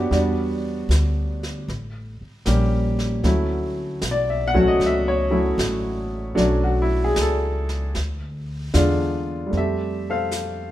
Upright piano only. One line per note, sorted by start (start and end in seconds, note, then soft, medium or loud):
0.00 0.11 B3 medium
0.00 0.12 D4 medium
0.00 0.11 F#4 medium
0.00 0.12 G4 medium
0.00 0.63 C#5 medium
0.00 0.12 E5 loud
0.11 0.59 G3 medium
0.11 0.58 B3 medium
0.11 0.59 D4 medium
0.11 0.59 F#4 medium
2.46 2.94 G3 medium
2.46 2.94 A#3 medium
2.46 2.95 C#4 medium
2.46 2.94 G4 medium
3.24 3.72 F#3 medium
3.24 3.72 A3 medium
3.24 3.72 C#4 medium
3.24 3.73 E4 medium
4.11 4.33 D5 medium
4.30 4.56 E5 medium
4.48 4.64 F#5 loud
4.54 5.29 F#3 medium
4.54 5.29 A3 medium
4.54 5.29 C#4 medium
4.54 5.29 F#4 medium
4.68 4.81 D#5 medium
4.86 5.10 E5 medium
5.08 5.24 C#5 medium
5.31 5.56 F#3 medium
5.31 5.56 A3 medium
5.31 5.56 C#4 medium
5.31 5.56 E4 medium
6.35 6.85 F#3 medium
6.35 6.84 A3 medium
6.35 6.85 C#4 medium
6.35 6.85 D4 medium
6.64 6.90 F#4 medium
6.82 6.99 E4 medium
7.04 7.17 G#4 medium
7.21 7.94 A4 medium
8.74 9.22 D3 medium
8.74 9.23 G#3 medium
8.74 9.22 D4 medium
8.74 9.22 F4 medium
9.47 10.71 G3 medium
9.51 10.71 A3 soft
9.51 10.71 C4 soft
9.57 10.71 G4 medium
9.57 10.08 A4 medium
9.57 10.10 E5 medium
10.10 10.71 A4 medium
10.10 10.71 C5 medium
10.10 10.71 F5 medium